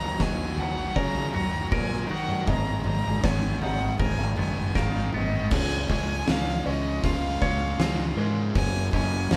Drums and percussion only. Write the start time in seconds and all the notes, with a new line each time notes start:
0.01 floor tom
0.20 kick, snare
0.58 floor tom
0.96 kick
1.15 floor tom
1.34 mid tom
1.72 kick, floor tom
2.28 mid tom
2.47 kick, floor tom
2.84 mid tom
3.04 floor tom
3.23 kick, snare
3.62 floor tom
4.00 kick
4.18 floor tom
4.37 mid tom
4.75 kick, snare, floor tom
5.13 mid tom
5.51 kick, crash
5.70 snare
5.90 kick
6.28 snare, open hi-hat
7.04 kick, open hi-hat
7.42 kick
7.80 snare, open hi-hat
8.55 kick, open hi-hat
8.93 kick
9.31 snare, open hi-hat